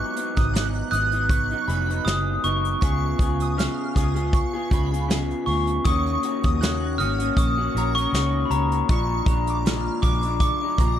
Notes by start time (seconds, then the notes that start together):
Already playing: G#2 F#3 B3 D#4 F#6
0.16 G#2 F#3 B3 D#4, closed hi-hat
0.36 G#1 D#6, kick, closed hi-hat
0.53 G#2 F#3 B3 D#4 F#6, snare, closed hi-hat
0.75 closed hi-hat
0.91 G#1 G#2 F#3 B3 D#4 D#6 F#6, closed hi-hat
1.12 F#3 B3 D#4, closed hi-hat
1.29 C#6, kick, closed hi-hat
1.51 F#3 B3 D#4, closed hi-hat
1.68 F1 G#2 F#3 B3 D#4 B5, closed hi-hat
1.89 F#3 B3 D#4, closed hi-hat
2.05 F#1 G#2 F#3 B3 D#4 D#6, snare, closed hi-hat
2.43 F#1 G#2 F#3 B3 D#4 C#6, closed hi-hat
2.65 closed hi-hat
2.81 C#2 C#3 B3 F4 G#4 C#6, kick, closed hi-hat
3.19 C#2 C#3 B3 F4 G#4, kick, closed hi-hat
3.40 D#6, closed hi-hat
3.57 C#3 B3 F4 G#4 F6, snare, closed hi-hat
3.94 C#2 C#3 B3 F4 G#4 D#6, kick, closed hi-hat
4.15 B3 F4 G#4, closed hi-hat
4.33 C#6, kick, closed hi-hat
4.53 B3 F4 G#4
4.70 C#2 C#3 B3 F4 G#4 B5, kick, closed hi-hat
4.91 B3 F4 G#4, closed hi-hat
5.08 C#3 B3 F4 G#4, snare, closed hi-hat
5.31 closed hi-hat
5.46 D2 C#3 B3 F4 G#4 C#6, open hi-hat
5.67 closed hi-hat
5.85 D#2 D#3 A#3 C#4 F#4 C#6 D#6, kick, closed hi-hat
6.06 closed hi-hat
6.22 D#3 A#3 C#4 F#4, closed hi-hat
6.43 D#2 D#6, kick, closed hi-hat
6.60 D#3 A#3 C#4 F#4 F#6, snare, closed hi-hat
6.98 G#1 D#3 A#3 C#4 F#4 D#6 F6, closed hi-hat
7.19 A#3 C#4 F#4, closed hi-hat
7.37 A#1 C#6 D#6, kick, closed hi-hat
7.58 A#3 C#4 F#4
7.75 A#1 D#3 A#3 C#4 F#4 A#5, closed hi-hat
7.95 A#3 C#4 F#4 C#6, closed hi-hat
8.13 C#2 D#3 A#3 C#4 F#4, snare, closed hi-hat
8.45 B5
8.50 C#2 D#3 A#3 C#4 F#4 A#5, closed hi-hat
8.72 closed hi-hat
8.89 A#1 A#2 F3 G#3 D4 C#6, kick, closed hi-hat
9.26 A#1 A#2 F3 G#3 D4 A#5, kick, closed hi-hat
9.47 D6, closed hi-hat
9.65 A#2 F3 G#3 D4 F6, snare, closed hi-hat
10.02 A#1 A#2 F3 G#3 D4 D6, kick, closed hi-hat
10.23 F3 G#3 D4, closed hi-hat
10.40 C#6 D6, kick, closed hi-hat
10.62 F3 G#3 D4
10.78 A#1 A#2 F3 G#3 D4 A#5, kick, closed hi-hat